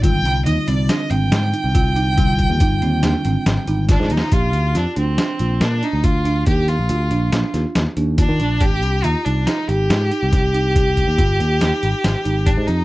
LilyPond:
<<
  \new Staff \with { instrumentName = "Marimba" } { \time 5/4 \key aes \lydian \tempo 4 = 140 f'4 ees'8 c'8 d'8 c'4 ees'8 f'8 ees'8 | f'4 ees'8 c'8 d'8 c'4 ees'8 f'8 ees'8 | g'4 f'8 d'8 d'8 f'4 d'8 f'8 d'8 | g'4 f'8 d'8 d'8 f'4 d'8 f'8 d'8 |
g'4 f'8 ees'8 ees'8 g'4 ees'8 g'8 ees'8 | g'4 f'8 ees'8 ees'8 g'4 ees'8 g'8 ees'8 | }
  \new Staff \with { instrumentName = "Violin" } { \time 5/4 \key aes \lydian g''4 ees''8 d''8 ees''8 g''2~ g''8~ | g''1 d'8 ees'8 | f'4 d'8 c'4. d'8 ees'8 f'4 | g'8 f'2 r4. d'4 |
g'4 ees'8 d'8 ees'8 g'2~ g'8~ | g'1 d'8 ees'8 | }
  \new Staff \with { instrumentName = "Tine electric piano" } { \time 5/4 \key aes \lydian <d g c' f'>1~ <d g c' f'>4 | <d g c' f'>1~ <d g c' f'>4 | r1 r4 | r1 r4 |
r1 r4 | r1 r4 | }
  \new Staff \with { instrumentName = "Picked electric bass" } { \clef bass \time 5/4 \key aes \lydian aes,,8 c,8 ees,16 r16 c,8 r8 aes,,8 aes,8 r16 c,4~ c,16~ | c,8. ees,16 g,,8 ees,8 ees,16 r16 aes,,16 r16 aes,,16 r16 aes,,8. aes,16 ees,16 r16 | bes,,8 d,8 f,16 r16 d,8 r8 bes,,8 bes,8 r16 d,4~ d,16 | ees,8. bes,,16 d,8 bes,,8 bes,,16 r16 ees,16 r16 ees,16 r16 ees,8. ees16 bes,,8 |
aes,,8 c,8 ees,16 r16 c,8 r8 aes,,8 aes,8 r16 c,4~ c,16~ | c,8. ees,16 g,,8 ees,8 ees,16 r16 aes,,16 r16 aes,,16 r16 aes,,8. aes,16 f,8 | }
  \new DrumStaff \with { instrumentName = "Drums" } \drummode { \time 5/4 <hh bd>8 <hh sn>8 hh8 hh8 <hh sn>8 hh8 <hh sn>8 hh8 <hh bd>8 hh8 | <hh bd>8 <hh bd>8 <hh bd>8 hh8 <hh sn>8 hh8 <hh sn>8 hh8 \tuplet 3/2 { <hh bd sn>16 r16 sn16 hh16 sn16 r16 } | <hh bd>8 hh8 <hh sn>8 hh8 <hh sn>8 hh8 <hh sn>8 hh8 <hh bd>8 hh8 | <hh bd>8 <hh sn>8 hh8 hh8 <hh sn>8 <hh sn>8 <hh sn>8 hh8 <hh bd>8 hh8 |
<hh bd>8 hh8 hh8 hh8 <hh sn>8 hh8 <hh sn>8 hh8 <hh bd sn>8 hh8 | <hh bd>8 <hh bd>8 <hh bd>8 hh8 <hh sn>8 hh8 <hh sn>8 hh8 <hh bd>8 hh8 | }
>>